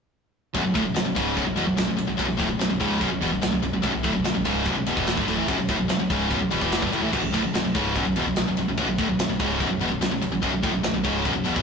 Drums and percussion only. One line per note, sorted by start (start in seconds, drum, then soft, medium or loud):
0.54 kick medium
0.54 ride loud
0.75 kick loud
0.75 ride medium
0.96 snare loud
0.96 ride loud
1.16 kick loud
1.16 ride medium
1.37 kick medium
1.37 ride loud
1.57 ride medium
1.78 snare loud
1.78 ride loud
1.98 ride medium
2.19 kick loud
2.19 ride loud
2.40 kick loud
2.40 ride medium
2.61 snare loud
2.61 ride medium
2.81 kick medium
2.81 ride medium
3.01 kick loud
3.01 ride medium
3.22 ride medium
3.42 snare loud
3.42 ride loud
3.63 ride medium
3.83 kick loud
3.83 ride loud
4.04 kick loud
4.04 ride medium
4.25 snare loud
4.25 ride loud
4.45 kick medium
4.45 ride medium
4.65 kick medium
4.65 ride medium
4.86 ride medium
4.97 kick loud
5.07 snare loud
5.07 ride loud
5.17 kick loud
5.28 ride medium
5.48 kick loud
5.48 ride loud
5.68 kick loud
5.68 ride medium
5.89 snare loud
5.89 ride loud
6.10 kick loud
6.10 ride medium
6.31 kick loud
6.31 ride medium
6.51 ride medium
6.62 kick loud
6.72 snare loud
6.72 ride medium
6.82 kick loud
6.93 ride medium
7.13 kick loud
7.13 crash loud
7.34 kick loud
7.34 ride medium
7.55 snare loud
7.55 ride loud
7.75 kick loud
7.75 ride medium
7.96 kick medium
7.96 ride medium
8.16 ride medium
8.36 snare loud
8.36 ride loud
8.57 ride medium
8.77 kick loud
8.77 ride loud
8.98 kick loud
8.98 ride medium
9.19 snare loud
9.19 ride loud
9.40 kick loud
9.40 ride medium
9.60 kick loud
9.60 ride medium
9.81 ride medium
10.02 snare loud
10.02 ride loud
10.22 ride medium
10.43 kick loud
10.43 ride medium
10.63 kick loud
10.63 ride medium
10.84 snare loud
10.84 ride loud
11.05 kick medium
11.05 ride medium
11.25 kick medium
11.25 ride medium
11.45 ride medium
11.56 kick loud